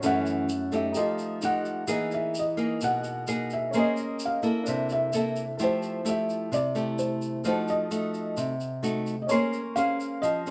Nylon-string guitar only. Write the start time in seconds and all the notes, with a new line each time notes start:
0.03 F#2 E3 A3 C#4
0.72 A3 D#4 G4
0.96 F3
1.42 A3 D#4 G4
1.87 E3 A#3 D#4 G#4
2.57 A#3 D#4 G#4
2.82 B2
3.28 A#3 D#4 G#4
3.74 A#3 C#4 G#4 C5
4.43 A#3 E4 A4
4.67 C3
5.13 A#3 E4 A4
5.59 F3 A3 E4 G4
6.05 A3 E4 G4
6.52 C3
6.75 A3 E4 G4
7.45 F3 A3 D#4 F#4
7.91 A3 D#4 F#4
8.37 C3
8.83 A3 D#4 F#4
9.30 A#3 C#4 G#4 C5
9.77 C#4 G#4 C5
10.23 F3
10.47 C#4 G#4